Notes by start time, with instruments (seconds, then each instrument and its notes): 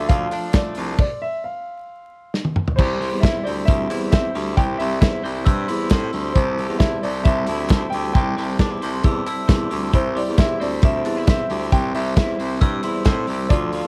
Already playing: clean electric guitar A3 D4, synth keys F4 A4 D5, upright piano E5
0.09 baritone saxophone D2, clean electric guitar F3 A3 D4 F4 A4, upright piano F5, kick, closed hi-hat
0.31 clean electric guitar D4 F4 A4, clap, open hi-hat
0.53 clean electric guitar D3 A3 D4 F4 A4, upright piano D5, kick, snare, clap, closed hi-hat
0.75 baritone saxophone C2, clean electric guitar F3 F4 A4, open hi-hat
0.79 clean electric guitar D4
0.98 upright piano D5, kick, crash
1.22 upright piano E5
1.44 upright piano F5
2.34 snare
2.45 high tom
2.56 mid tom
2.68 floor tom
2.76 baritone saxophone C2, clean electric guitar C3 E3 G3 C4 E4 C5, upright piano C5, kick, crash
3.00 clean electric guitar G3 C4 E4 C5, open hi-hat
3.12 baritone saxophone E2
3.20 clean electric guitar C3 E3 G3 C4 E4 C5, upright piano E5, kick, clap
3.25 snare, closed hi-hat
3.43 baritone saxophone D2, clean electric guitar G3 C4 E4 C5, upright piano D5, open hi-hat
3.65 baritone saxophone D2, clean electric guitar G3 C4 E4, upright piano E5, kick, closed hi-hat
3.70 clean electric guitar C5
3.89 baritone saxophone E2, clean electric guitar G3 C4 E4 C5, clap, open hi-hat
4.12 clean electric guitar C3 E3 G3 C4 E4 C5, upright piano E5, kick, snare, clap, closed hi-hat
4.34 baritone saxophone D2, clean electric guitar G3 C4 E4 C5, open hi-hat
4.57 baritone saxophone C2, clean electric guitar C3 E3 G3 C4 E4 C5, upright piano G5, kick, closed hi-hat
4.78 baritone saxophone C2, clean electric guitar G3 C4 E4 C5, upright piano E5, open hi-hat
5.00 baritone saxophone E2, clean electric guitar C3 E3 G3 C4 E4 C5, upright piano E5, kick, snare, clap, closed hi-hat
5.23 baritone saxophone C2, clean electric guitar G3 C4 E4 C5, open hi-hat
5.45 baritone saxophone G2, clean electric guitar G3 C4 E4 C5, glockenspiel E6, kick, closed hi-hat
5.68 baritone saxophone E2, clean electric guitar G3 C4 E4 C5, glockenspiel C6, clap, open hi-hat
5.90 baritone saxophone A2, clean electric guitar C3 E3 G3 C4 E4 C5, glockenspiel C6, kick, snare, clap, closed hi-hat
6.13 baritone saxophone D2, clean electric guitar G3 C4 E4, open hi-hat
6.34 baritone saxophone C2, clean electric guitar C3 E3 G3 C4 E4 A4, upright piano C5, kick, closed hi-hat
6.57 clean electric guitar G3 C4 E4 A4, open hi-hat
6.69 baritone saxophone E2
6.79 clean electric guitar C3 E3 G3 C4 E4 A4, upright piano E5, kick, snare, clap, closed hi-hat
7.02 baritone saxophone C2, clean electric guitar G3 C4 E4 A4, upright piano D5, open hi-hat
7.24 baritone saxophone C2, clean electric guitar G3 C4 E4 A4, upright piano E5, kick, closed hi-hat
7.47 baritone saxophone D2, clean electric guitar G3 C4 E4 A4, clap, open hi-hat
7.69 clean electric guitar C3 E3 G3 C4 E4 A4, kick, snare, clap, closed hi-hat
7.90 baritone saxophone D2, clean electric guitar E4 A4, upright piano G5, open hi-hat
7.94 clean electric guitar G3 C4
8.13 baritone saxophone C2, clean electric guitar C3 E3 G3 C4 E4 A4, upright piano G5, kick, closed hi-hat
8.37 baritone saxophone C2, clean electric guitar G3 C4 E4 A4, open hi-hat
8.59 baritone saxophone E2, clean electric guitar C3 E3 G3 C4 D4 E4 A4, glockenspiel D6, kick, snare, clap, closed hi-hat
8.71 clean electric guitar E4
8.82 baritone saxophone C2, clean electric guitar G3 C4 E4 A4, glockenspiel C6, open hi-hat
9.04 baritone saxophone E2, clean electric guitar G3 C4 E4 A4, glockenspiel E6, kick, closed hi-hat
9.26 clean electric guitar G3 C4 E4 A4, glockenspiel E6, clap, open hi-hat
9.49 baritone saxophone E2, clean electric guitar C3 E3 G3 C4 E4 A4, glockenspiel C6, kick, snare, clap, closed hi-hat
9.71 baritone saxophone D2, clean electric guitar G3 C4 E4 A4, open hi-hat
9.93 baritone saxophone C2, clean electric guitar C3 E3 G3 C4 E4 C5, synth keys E4 G4 C5 E5, upright piano C5, kick, closed hi-hat
10.15 clean electric guitar G3 C4 E4 C5, upright piano D5, open hi-hat
10.28 baritone saxophone E2
10.37 clean electric guitar C3 E3 G3 C4 E4 C5, upright piano E5, kick, snare, clap, closed hi-hat
10.59 baritone saxophone D2, clean electric guitar G3 C4 E4 C5, upright piano D5, open hi-hat
10.81 baritone saxophone D2, clean electric guitar G3 C4 E4 C5, upright piano E5, kick, closed hi-hat
11.05 baritone saxophone E2, clean electric guitar G3 C4 D4 E4 C5, clap, open hi-hat
11.17 clean electric guitar E4
11.27 clean electric guitar C3 E3 G3 C4 E4 C5, upright piano E5, kick, snare, clap, closed hi-hat
11.50 baritone saxophone D2, clean electric guitar G3 C4 E4 C5, open hi-hat
11.72 baritone saxophone C2, clean electric guitar C3 E3 G3 C4 E4 C5, upright piano G5, kick, closed hi-hat
11.94 baritone saxophone C2, clean electric guitar G3 C4 E4 C5, upright piano E5, open hi-hat
12.16 baritone saxophone E2, clean electric guitar C3 E3 G3 C4 E4 C5, upright piano E5, kick, snare, clap, closed hi-hat
12.39 baritone saxophone C2, clean electric guitar G3 C4 E4 C5, open hi-hat
12.60 baritone saxophone G2, clean electric guitar G3 C4 E4 C5, glockenspiel E6, kick, closed hi-hat
12.83 baritone saxophone E2, clean electric guitar G3 C4 E4 C5, glockenspiel C6, clap, open hi-hat
13.05 baritone saxophone A2, clean electric guitar C3 E3 G3 C4 E4 C5, glockenspiel C6, kick, snare, clap, closed hi-hat
13.27 baritone saxophone C2, clean electric guitar G3 C4 E4 C5, open hi-hat
13.49 baritone saxophone D2, clean electric guitar D3 F3 A3 D4 F4 A4, synth keys F4 A4 D5 F5, upright piano D5, kick, closed hi-hat
13.73 clean electric guitar F3 D4 F4 A4, open hi-hat
13.84 baritone saxophone E2